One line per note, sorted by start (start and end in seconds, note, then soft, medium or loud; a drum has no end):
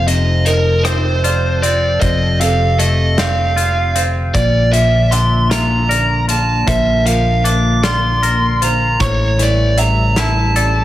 0.00 1.98 F1 medium
0.00 1.63 F2 medium
0.00 4.31 F3 medium
0.00 1.99 D#4 medium
0.00 0.46 C5 medium
0.00 4.31 C5 medium
0.00 4.31 A5 medium
0.07 2.01 C3 medium
0.07 0.48 D#5 medium
0.07 closed hi-hat soft
0.46 0.84 A#4 medium
0.46 1.24 D#5 medium
0.46 closed hi-hat soft
0.84 1.61 C4 medium
0.84 1.65 C5 medium
0.84 cross-stick medium
0.84 closed hi-hat medium
1.24 3.56 F4 medium
1.24 2.02 D5 medium
1.24 closed hi-hat soft
1.62 3.17 C4 medium
1.62 1.99 D5 medium
1.62 closed hi-hat soft
2.01 4.31 F1 medium
2.01 3.96 F2 medium
2.01 8.97 D3 medium
2.01 2.40 C5 medium
2.01 2.41 D#5 medium
2.01 kick medium
2.01 closed hi-hat medium
2.40 4.35 C3 soft
2.40 3.18 A4 medium
2.40 2.79 F5 medium
2.40 closed hi-hat soft
2.79 4.37 A3 soft
2.79 3.19 D#5 medium
2.79 closed hi-hat soft
3.18 3.94 C4 medium
3.18 3.95 D5 medium
3.18 4.02 F5 medium
3.18 snare medium
3.18 closed hi-hat medium
3.56 5.50 F4 medium
3.56 closed hi-hat soft
3.95 4.34 C4 soft
3.95 4.34 C5 medium
3.95 closed hi-hat medium
4.34 6.64 A#1 medium
4.34 6.28 A#2 medium
4.34 8.96 A#3 medium
4.34 4.72 D5 medium
4.34 5.12 D5 medium
4.34 kick medium
4.34 closed hi-hat medium
4.73 6.67 F3 medium
4.73 5.13 E5 medium
4.73 closed hi-hat soft
5.11 7.06 D4 soft
5.11 5.89 E5 medium
5.11 5.51 C6 medium
5.11 closed hi-hat soft
5.50 6.27 F4 medium
5.50 6.25 A#5 medium
5.50 snare medium
5.50 closed hi-hat medium
5.89 7.84 A#4 medium
5.89 6.67 D5 medium
5.89 closed hi-hat medium
6.28 7.82 F4 soft
6.28 6.69 A5 medium
6.28 closed hi-hat medium
6.67 8.96 A#1 medium
6.67 8.61 A#2 medium
6.67 7.06 C5 medium
6.67 7.06 E5 medium
6.67 kick medium
6.67 closed hi-hat medium
7.05 9.00 F3 medium
7.05 7.84 A#4 medium
7.05 7.46 F5 medium
7.05 closed hi-hat soft
7.44 9.00 D4 medium
7.44 7.81 D6 medium
7.44 closed hi-hat soft
7.84 8.60 F4 medium
7.84 8.61 D5 medium
7.84 8.63 C6 medium
7.84 snare medium
7.84 closed hi-hat medium
8.23 9.00 A#4 medium
8.23 closed hi-hat soft
8.62 9.00 F4 soft
8.62 9.01 C5 medium
8.62 9.02 A#5 medium
8.62 closed hi-hat medium
9.00 10.84 A1 medium
9.00 10.84 A2 medium
9.00 10.84 C#3 medium
9.00 10.84 G3 medium
9.00 9.41 C#5 medium
9.00 9.78 C#6 medium
9.00 kick medium
9.00 closed hi-hat medium
9.39 10.84 E3 medium
9.39 9.77 D5 medium
9.39 closed hi-hat soft
9.77 10.55 E5 medium
9.77 10.19 A#5 medium
9.77 closed hi-hat soft
10.16 10.84 E4 medium
10.16 10.84 A5 medium
10.16 snare medium
10.16 closed hi-hat medium
10.56 10.84 A4 medium
10.56 10.84 D5 medium
10.56 closed hi-hat medium